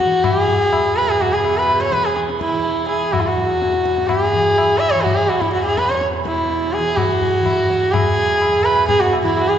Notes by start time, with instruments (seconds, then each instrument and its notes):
Already playing: tanpura E2 B2 E3, sarangi F#4
0.00 tabla ke
0.05 tanpura E3
0.12 tabla te
0.24 sarangi G4, tabla na, tabla ge
0.40 sarangi G#4
0.48 tabla ge
0.66 tanpura E2
0.73 tabla na
0.96 sarangi B4, tabla na
1.09 sarangi G#4
1.20 sarangi F#4, tabla tin, tabla ge
1.28 tanpura B2, sarangi G#4
1.45 tabla na
1.57 sarangi B4
1.69 tabla na
1.80 sarangi C#5
1.89 tanpura E3, sarangi B4, tabla ke
2.04 sarangi G#4, tabla te
2.17 tabla te
2.29 tabla te
2.40 sarangi E4, tabla ke
2.50 tanpura E3, tabla te
2.64 tabla tin
2.88 sarangi G#4, tabla na
3.11 tanpura E2, sarangi F#4, tabla na, tabla ge
3.20 sarangi E4
3.26 sarangi F#4
3.37 tabla ge
3.62 tabla te
3.73 tanpura B2, tabla te
3.85 tabla ke
3.98 tabla te
4.07 sarangi G4, tabla na, tabla ge
4.22 sarangi G#4
4.33 tanpura E3, tabla ge
4.58 tabla na
4.79 sarangi E5, tabla na
4.92 tanpura E3, sarangi C#5
5.03 sarangi F#4, tabla tin, tabla ge
5.15 sarangi G#4
5.28 sarangi F#4, tabla na
5.40 sarangi E4, tabla ke
5.53 tanpura E2, sarangi F#4, tabla na
5.64 sarangi G#4
5.77 sarangi B4, tabla ke
5.89 sarangi C#5, tabla te
6.01 tabla te
6.13 tanpura B2, tabla te
6.25 sarangi E4, tabla ke
6.38 tabla te
6.49 tabla tin
6.72 sarangi G#4, tabla na
6.78 tanpura E3
6.96 sarangi F#4, tabla na, tabla ge
7.22 tabla ge
7.39 tanpura E3
7.46 tabla na, tabla ge
7.70 tabla te
7.92 sarangi G#4, tabla na, tabla ge
8.01 tanpura E2
8.18 tabla ge
8.42 tabla na
8.61 tanpura B2, sarangi B4
8.65 tabla na
8.88 sarangi G#4, tabla tin, tabla ge
9.00 sarangi F#4
9.13 tabla na
9.22 tanpura E3, sarangi E4 F#4, tabla ke
9.36 sarangi F#4, tabla na
9.48 sarangi G#4